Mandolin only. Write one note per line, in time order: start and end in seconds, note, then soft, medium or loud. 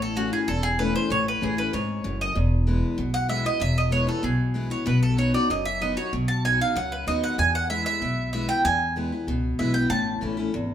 0.02 0.17 A4 medium
0.17 0.32 F#4 medium
0.33 0.48 G#4 medium
0.48 0.63 A4 loud
0.63 0.78 G#4 loud
0.79 0.94 B4 medium
0.96 1.10 C5 medium
1.12 1.26 C#5 medium
1.28 1.42 B4 medium
1.43 1.58 G#4 medium
1.58 1.73 B4 medium
1.74 2.17 C#5 medium
2.21 2.36 D#5 medium
3.14 3.29 F#5 loud
3.29 3.45 E5 medium
3.46 3.61 D#5 loud
3.61 3.77 E5 medium
3.78 3.92 D#5 medium
3.92 4.08 C#5 medium
4.09 4.24 A4 medium
4.24 4.68 G#4 medium
4.71 4.86 C#5 medium
4.87 5.02 B4 medium
5.03 5.18 A4 medium
5.18 5.34 C#5 medium
5.34 5.49 D5 medium
5.51 5.66 D#5 medium
5.66 5.81 E5 loud
5.82 5.97 D#5 medium
5.97 6.12 C#5 medium
6.28 6.43 A5 medium
6.45 6.60 G#5 medium
6.61 6.76 F5 loud
6.77 6.91 F#5 medium
6.92 7.07 B4 medium
7.08 7.23 D#5 loud
7.24 7.38 F#5 loud
7.39 7.54 G#5 loud
7.55 7.70 F#5 medium
7.70 7.85 E5 medium
7.86 8.30 E5 medium
8.33 8.48 E5 medium
8.49 8.64 G5 loud
8.65 8.94 G#5 loud
9.59 9.74 E5 medium
9.74 9.89 G5 medium
9.90 10.19 A5 loud